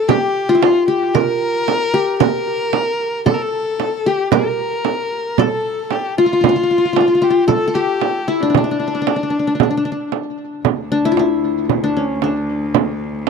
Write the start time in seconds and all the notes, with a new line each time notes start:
Already playing: A4
0.08 G4, frame drum
0.49 F4
0.55 E4
0.62 F4, frame drum
0.88 G4
1.14 A#4, frame drum
1.68 frame drum
1.94 G4
2.20 A#4, frame drum
2.73 frame drum
3.26 A4, frame drum
3.34 A#4
3.42 A4
3.80 frame drum
4.06 G4
4.32 A#4, frame drum
4.85 frame drum
5.38 A4, frame drum
5.91 G4, frame drum
6.18 F4
6.26 F4
6.33 F4
6.41 F4, frame drum
6.49 F4
6.56 F4
6.63 F4
6.71 F4
6.78 F4
6.85 F4
6.93 F4, frame drum
7.01 F4
7.08 F4
7.15 F4
7.22 F4 G4
7.30 F4
7.48 A4, frame drum
7.68 A4
7.74 G4
8.01 frame drum
8.28 E4
8.41 D4
8.50 D4
8.55 D4, frame drum
8.64 D4
8.71 D4
8.80 D4
8.88 D4
8.95 D4
9.02 D4
9.07 D4, frame drum
9.16 D4
9.23 D4
9.30 D4
9.39 D4
9.47 D4
9.55 D4
9.60 D4, frame drum
9.71 D4
9.77 D4
9.85 D4
9.92 D4
10.12 frame drum
10.65 D2, frame drum
10.92 D4
11.05 E4
11.12 F4
11.17 E4, frame drum
11.69 frame drum
11.84 D4
11.97 C#4
12.22 D4, frame drum
12.74 frame drum